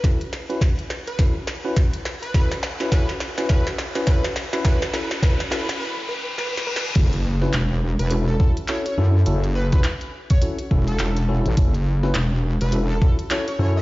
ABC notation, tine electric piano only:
X:1
M:4/4
L:1/16
Q:"Swing 16ths" 1/4=104
K:F#m
V:1 name="Tine electric piano"
[CEFA] z2 [CEFB] z4 [CEFA] z2 [CEFB] z4 | [CEFA] z2 [CEFB] [CEFA] z2 [CEFB] [CEFA] z2 [CEFB] [CEFA] z2 [CEFB] | [CEFA] z [CEFA] z [CEFA] z [CEFA] z8 z | [CEFA] z2 [CEFB] z4 [CEFA] z [CEFA] z [CEFA] z [CEFA]2 |
[CEFA] z2 [CEFB] z4 [CEFA] z [CEFA] z [CEFA] z [CEFA]2 | [CEFA] z2 [CEFB] z4 [CEFA] z [CEFA] z [CEFA] z [CEFA]2 |]